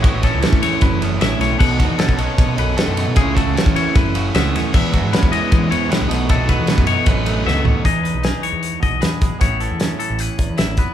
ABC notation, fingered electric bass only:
X:1
M:4/4
L:1/16
Q:1/4=154
K:E
V:1 name="Fingered electric bass" clef=bass
A,,,3 C,, z E,,2 z F,,,4 A,,,2 B,,,2 | B,,,3 E,, z B,,,2 z B,,2 B,,,2 z F,,2 B,, | C,,3 C,, z E,,2 z F,,,4 C,,2 D,, z | E,,3 G,, z E,,2 z E,2 E,,2 z =C,, B,,,2- |
B,,,3 E,, z F,,2 z A,,,4 C,,2 D,,2 | E,,3 B,,,2 z2 E,,2 z2 B,,, E,,2 E,, z | A,,,3 E,,2 z2 A,,,2 z2 E,, A,,,2 =F,,, z |]